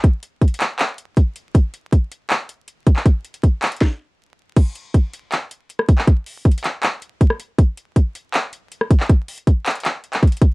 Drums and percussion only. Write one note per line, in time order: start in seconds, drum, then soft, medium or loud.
0.04 kick loud
0.04 closed hi-hat medium
0.23 closed hi-hat medium
0.41 kick medium
0.41 closed hi-hat soft
0.48 closed hi-hat medium
0.54 closed hi-hat medium
0.60 clap loud
0.60 closed hi-hat medium
0.79 clap loud
0.79 closed hi-hat medium
0.98 closed hi-hat medium
1.17 kick medium
1.17 closed hi-hat medium
1.36 closed hi-hat medium
1.55 kick loud
1.55 closed hi-hat medium
1.74 closed hi-hat medium
1.92 kick medium
1.92 closed hi-hat medium
2.12 closed hi-hat medium
2.30 clap loud
2.30 closed hi-hat medium
2.49 closed hi-hat medium
2.68 closed hi-hat medium
2.87 kick loud
2.87 closed hi-hat medium
2.96 clap medium
3.06 kick loud
3.06 closed hi-hat medium
3.25 closed hi-hat medium
3.34 closed hi-hat medium
3.43 kick medium
3.43 closed hi-hat medium
3.62 clap loud
3.62 closed hi-hat medium
3.67 closed hi-hat medium
3.72 closed hi-hat medium
3.76 closed hi-hat soft
3.81 kick loud
3.81 snare medium
4.57 kick loud
4.57 closed hi-hat medium
4.57 crash loud
4.75 closed hi-hat medium
4.94 kick medium
4.94 closed hi-hat medium
5.13 closed hi-hat medium
5.32 clap loud
5.32 closed hi-hat medium
5.51 closed hi-hat medium
5.70 closed hi-hat medium
5.79 cross-stick medium
5.89 kick loud
5.89 closed hi-hat medium
5.98 clap medium
6.08 kick loud
6.08 closed hi-hat medium
6.26 open hi-hat medium
6.45 kick medium
6.45 closed hi-hat soft
6.52 closed hi-hat medium
6.58 closed hi-hat medium
6.64 clap loud
6.64 closed hi-hat medium
6.83 clap loud
6.83 closed hi-hat medium
7.02 closed hi-hat medium
7.21 kick medium
7.21 closed hi-hat medium
7.30 cross-stick medium
7.40 closed hi-hat medium
7.58 kick loud
7.58 closed hi-hat medium
7.77 closed hi-hat medium
7.96 kick medium
7.96 closed hi-hat medium
8.15 closed hi-hat medium
8.34 clap loud
8.34 closed hi-hat medium
8.53 closed hi-hat medium
8.72 closed hi-hat medium
8.81 cross-stick medium
8.90 kick loud
8.90 closed hi-hat medium
9.00 clap medium
9.09 kick loud
9.09 closed hi-hat medium
9.28 closed hi-hat medium
9.28 open hi-hat medium
9.38 closed hi-hat medium
9.47 kick medium
9.47 closed hi-hat medium
9.66 clap loud
9.66 closed hi-hat medium
9.71 closed hi-hat medium
9.76 closed hi-hat medium
9.80 closed hi-hat soft
9.85 clap loud
9.85 closed hi-hat medium
10.04 closed hi-hat soft
10.13 clap medium
10.13 closed hi-hat medium
10.23 kick medium
10.23 closed hi-hat soft
10.27 closed hi-hat medium
10.32 closed hi-hat medium
10.37 closed hi-hat medium
10.42 kick loud
10.42 closed hi-hat medium